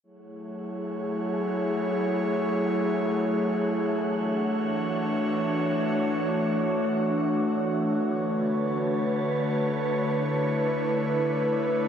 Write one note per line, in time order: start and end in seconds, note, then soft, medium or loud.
0.03 3.96 F#3 medium
0.03 3.96 A3 medium
0.03 11.88 A3 medium
0.03 3.96 E4 medium
0.03 3.96 G#4 medium
0.03 3.96 C#5 medium
0.03 7.93 E5 medium
0.03 7.93 F#5 medium
4.00 7.93 E3 medium
4.00 7.93 D4 medium
4.00 11.88 D4 medium
4.00 9.91 F#4 medium
4.00 7.93 C#5 medium
7.96 11.88 D3 medium
7.96 11.88 B4 medium
7.96 11.88 C#5 medium
7.96 11.88 A5 medium
9.95 11.88 E4 medium